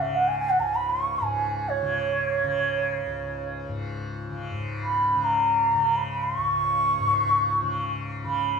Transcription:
Already playing: C#2 G#2 C#3
0.01 E5
0.15 F#5
0.28 G#5
0.39 G#5
0.49 F#5
0.59 C#2 G#5 A#5
0.74 B5
0.89 C#6
1.21 G#2 G#5
1.68 C#5
1.82 C#3
2.44 C#3
3.06 C#2
3.69 G#2
4.30 C#3
4.52 G#2
4.82 B5
5.15 C#3
5.23 A#5
5.75 C#3
5.96 B5
6.23 C#6
6.38 C#2
7.00 G#2
7.62 C#3
8.24 C#3 B5

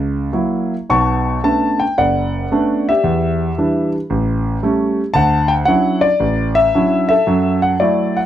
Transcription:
Already playing: C#2
0.33 F#3 A#3 E4
0.90 B1 B2 A5 C#6
1.44 A3 B3 C#4 D4 A5
1.80 G5
1.98 F#1 D5 F#5
2.52 A3 B3 C#4 D4
2.89 G4 E5
3.04 E2
3.58 E3 G3 D4
4.10 A1
4.63 G3 A3 C#4
5.14 D2 F#5 A5
5.48 G5
5.65 F#3 C#4 D4 E4 F#5
6.01 D5
6.20 A1
6.55 E5
6.75 F#3 C#4 D4 E4
7.09 A4 E5
7.27 F#2 F#3
7.62 F#5
7.80 F#3 A3 E4 D5
8.17 F#5

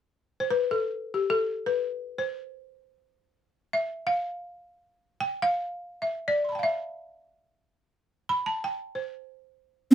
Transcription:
0.40 C5
0.51 B4
0.71 A4
1.14 G4
1.30 A4
1.66 B4
2.18 C5
3.73 E5
4.07 F5
5.21 G5
5.42 F5
6.02 E5
6.28 D5
6.44 C6
6.49 A5 B5
6.55 F5 G5
6.63 E5
8.29 B5
8.46 A5
8.64 G5
8.95 C5

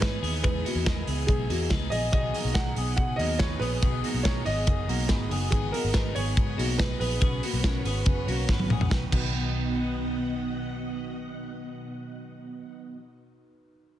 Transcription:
Already playing: G#2 B3 D#4 E4 G#4 D#5 E5 G#5
0.00 E3 G#3 B3 D#4 E4 G#4 B4, kick, snare, hi-hat pedal, ride
0.21 D#2 B3 D#4 G#4, open hi-hat
0.42 E2 E3 G#3 B3 D#4 E4 G#4 B4, kick, hi-hat pedal, ride
0.65 A#3 B3 D#4 F#4 G#4, open hi-hat
0.75 E2
0.85 E3 G#3 B3 D#4 E4 G#4 A#4, kick, snare, ride
1.07 C#2 B3 D#4 G#4, open hi-hat
1.26 B1 G#3 B3 D#4 E4 G#4, kick, hi-hat pedal, ride
1.47 E2 A#3 B3 D#4 E4 F#4 G#4, open hi-hat
1.70 C#2 E3 G#3 B3 D#4 E4 G#4 B4, kick, snare, ride
1.90 A#1 D#4 G#4 D#5, open hi-hat
1.95 B3
2.12 B1 B2 D#3 F#3 B3 D#4 F#4 G#4 D#5 F#5, kick, hi-hat pedal, ride
2.33 F#3 A#3 B3 D#4 F#4 G#4, open hi-hat
2.45 B1
2.54 B2 D#3 F#3 B3 D#4 F#4 G#4 A#4 F#5, kick, snare, ride
2.75 B1 F#3 B3 D#4 G#4, open hi-hat
2.96 B2 F#3 B3 D#4 F#4 G#4 B4 F#5, kick, hi-hat pedal, ride
3.16 D#2 A#3 B3 D#4 F#4 G#4 B4 D#5, open hi-hat
3.20 F#3 B3
3.39 B2 D#3 F#3 B3 D#4 G#4 B4 C#5, kick, snare, ride
3.59 A#1 F#3 B3 D#4 G#4 B4, open hi-hat
3.81 B1 B2 D#3 F#3 B3 D#4 F#4 G#4, kick, hi-hat pedal, ride
4.02 F#3 A#3 B3 D#4 F#4 G#4, open hi-hat
4.14 B1
4.23 B2 D#3 F#3 B3 D#4 G#4 A#4 C#5, kick, snare, ride
4.44 G#1 F#3 B3 D#4 G#4 D#5, open hi-hat
4.66 F#1 F#3 B3 D#4 F#4 G#4 A#4, kick, hi-hat pedal, ride
4.86 B1 F#3 A#3 B3 D#4 F#4 G#4, open hi-hat
5.08 G#1 B2 D#3 F#3 B3 D#4 F#4 G#4 B4, kick, snare, ride
5.28 F#1 F#3 B3 D#4 G#4, open hi-hat
5.50 G#1 G#2 D#3 F#3 B3 D#4 F#4 G#4 B5, kick, hi-hat pedal, ride
5.71 F#3 A#3 B3 D#4 F#4 G#4 A#4, open hi-hat
5.84 G#1
5.92 G#2 D#3 F#3 B3 D#4 F#4 G#4 A#4 B4, kick, snare, hi-hat pedal, ride
6.13 G#1 F#3 B3 D#4 G#4 C#5, open hi-hat
6.35 G#2 F#3 B3 D#4 F#4 G#4, kick, hi-hat pedal, ride
6.56 B1 A#3 B3 D#4 F#4 G#4, open hi-hat
6.61 F#3
6.76 G#2 D#3 F#3 B3 D#4 F#4 G#4 B4, kick, snare, ride
6.98 A#1 F#3 B3 D#4 G#4 B4, open hi-hat
7.20 B1 B3 C#4 F#4 G#4 B4 C#5 C#6, kick, hi-hat pedal, ride
7.42 A#3 C#4 F#4 B4, open hi-hat
7.53 B1
7.62 B3 C#4 F#4 A#4 B4, kick, snare, hi-hat pedal, ride
7.66 B4
7.85 G#1 B3 C#4 F#4 G#4 B4, open hi-hat
8.05 F#1 B3 C#4 F#4 B4, kick, hi-hat pedal, ride
8.09 B4
8.26 B1 A#3 B3 C#4 F#4 B4, open hi-hat
8.31 C#4
8.48 G#1 B3 C#4 F#4 B4, kick, snare
8.59 high tom
8.69 A#1 B3 C#4 F#4 G#4 B4, mid tom
8.81 floor tom
8.89 B1 B2 D#3 F#3 B3 D#4 F#4 D#5 F#5, kick, snare
8.93 B3 D#4 B4
9.09 B1 B2 D#3 F#3 D#4 F#4, kick, crash
9.14 B3 D#4 B4

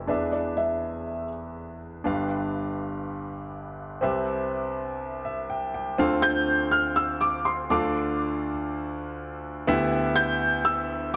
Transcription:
Already playing: F1 F2 C4 F4 A4 E5
0.07 E2 E3 D4 G#4 B4 D5 E5
0.32 D5
0.57 E5
2.04 G1 G2 D4 G4 B4 F5
4.01 C2 C3 C4 G4 B4 E5
5.25 E5
5.50 G5
5.74 G5
5.98 D2 D3 C4 F4 A4 F5
6.22 G6
6.71 F6
6.96 E6
7.21 D6
7.45 C6
7.70 D2 D3 D4 F4 A4 F5 D6
9.67 D2 D3 B3 E4 G4 E5
10.16 G6
10.65 E6

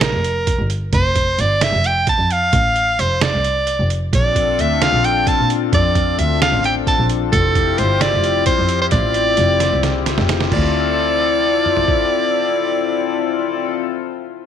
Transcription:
0.01 A#4, snare, closed hi-hat
0.13 F1
0.24 closed hi-hat
0.47 kick, closed hi-hat
0.58 G1
0.70 closed hi-hat
0.93 F1 C5, kick, closed hi-hat
1.16 kick, closed hi-hat
1.38 G1 D5, closed hi-hat
1.61 E5, snare, closed hi-hat
1.72 F1
1.84 G5, closed hi-hat
2.07 A5, kick, closed hi-hat
2.18 F2
2.30 F5, closed hi-hat
2.53 A1, kick, closed hi-hat
2.76 closed hi-hat
2.99 F1 C5, closed hi-hat
3.21 D5, snare, closed hi-hat
3.33 C2
3.44 closed hi-hat
3.67 closed hi-hat
3.79 F1
3.90 closed hi-hat
4.12 A#1 C4 D4 F4 A4 D5, kick, closed hi-hat
4.36 kick, closed hi-hat
4.59 D2 E5, closed hi-hat
4.82 F5, snare, closed hi-hat
4.92 A#1
5.04 G5, closed hi-hat
5.27 A5, kick, closed hi-hat
5.39 A#2
5.50 closed hi-hat
5.73 F2 D5, kick, closed hi-hat
5.95 kick, closed hi-hat
6.18 D2 E5, closed hi-hat
6.42 F5, snare, closed hi-hat
6.52 A1
6.64 G5, closed hi-hat
6.87 A5, kick, closed hi-hat
6.98 A#1
7.10 closed hi-hat
7.32 F1 C4 E4 F4 G4 A4, kick, closed hi-hat
7.55 kick, closed hi-hat
7.78 G1 C5, closed hi-hat
8.01 D5, snare, closed hi-hat
8.13 F1
8.24 closed hi-hat
8.46 C5, kick, closed hi-hat
8.59 F2
8.69 closed hi-hat
8.81 C5
8.91 A1 D5, kick, closed hi-hat
9.14 closed hi-hat
9.37 F1, closed hi-hat
9.60 snare, closed hi-hat
9.72 C2
9.83 snare, closed hi-hat
10.06 snare, closed hi-hat
10.18 F1, snare
10.29 snare, closed hi-hat
10.41 snare
10.51 D2 C4 E4 F4 A4 D5, kick, crash
11.66 mid tom
11.77 floor tom
11.88 kick

